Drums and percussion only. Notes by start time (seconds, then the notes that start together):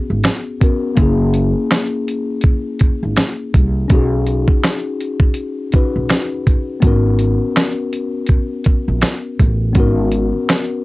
0.24 finger snap, snare, closed hi-hat
0.61 kick, closed hi-hat
0.97 kick, closed hi-hat
1.34 closed hi-hat
1.71 finger snap, snare, closed hi-hat
2.08 closed hi-hat
2.41 kick, closed hi-hat
2.79 kick, closed hi-hat
3.16 finger snap, snare, closed hi-hat
3.54 kick, closed hi-hat
3.90 kick, closed hi-hat
4.27 closed hi-hat
4.48 kick
4.64 finger snap, snare, closed hi-hat
5.01 closed hi-hat
5.20 kick
5.34 closed hi-hat
5.72 kick, closed hi-hat
6.09 finger snap, snare, closed hi-hat
6.47 kick, closed hi-hat
6.82 kick, closed hi-hat
7.19 closed hi-hat
7.56 finger snap, snare, closed hi-hat
7.93 closed hi-hat
8.27 kick, closed hi-hat
8.64 kick, closed hi-hat
9.01 finger snap, snare, closed hi-hat
9.39 kick, closed hi-hat
9.75 kick, closed hi-hat
10.12 closed hi-hat
10.49 finger snap, snare, closed hi-hat